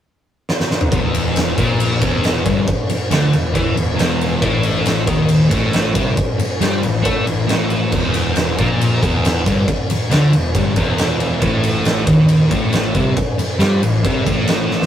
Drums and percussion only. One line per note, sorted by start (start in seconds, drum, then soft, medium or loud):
0.49 snare medium
0.60 snare medium
0.71 snare medium
0.81 mid tom loud
0.92 kick loud
0.92 ride loud
1.15 ride medium
1.36 snare loud
1.36 ride loud
1.58 kick loud
1.58 ride medium
1.80 ride loud
2.02 kick loud
2.02 ride medium
2.24 snare loud
2.24 ride loud
2.46 kick loud
2.46 ride medium
2.67 kick loud
2.67 ride medium
2.90 ride medium
3.11 snare loud
3.11 ride loud
3.33 ride medium
3.55 kick loud
3.55 ride loud
3.77 ride medium
3.99 snare loud
3.99 ride loud
4.21 ride medium
4.42 kick loud
4.42 ride medium
4.63 ride medium
4.86 snare loud
4.86 ride loud
5.07 kick loud
5.07 ride medium
5.29 ride loud
5.51 kick loud
5.51 ride medium
5.73 snare loud
5.73 ride loud
5.95 kick loud
5.95 ride medium
6.17 kick loud
6.17 ride loud
6.39 ride medium
6.61 snare loud
6.61 ride loud
6.83 ride medium
7.05 kick loud
7.05 ride loud
7.27 ride medium
7.49 snare loud
7.49 ride loud
7.70 ride medium
7.92 kick medium
7.92 crash loud
8.14 ride medium
8.36 snare loud
8.36 ride loud
8.58 kick loud
8.58 ride medium
8.81 ride loud
9.03 kick loud
9.03 ride medium
9.25 snare loud
9.25 ride loud
9.46 kick loud
9.46 ride medium
9.68 kick loud
9.68 ride medium
9.90 ride medium
10.11 snare loud
10.11 ride loud
10.33 ride medium
10.55 kick loud
10.55 ride loud
10.76 kick loud
10.76 ride medium
10.98 snare loud
10.98 ride loud
11.20 ride medium
11.42 kick loud
11.42 ride medium
11.63 ride medium
11.85 snare loud
11.85 ride loud
12.07 kick loud
12.07 ride medium
12.29 ride loud
12.51 kick medium
12.51 ride medium
12.73 snare loud
12.73 ride loud
12.95 kick loud
12.95 ride medium
13.17 kick loud
13.17 ride medium
13.39 ride medium
13.60 snare loud
13.60 ride loud
13.83 ride medium
14.05 kick loud
14.05 ride loud
14.26 kick loud
14.26 ride medium
14.48 snare loud
14.48 ride loud
14.71 snare medium
14.82 snare loud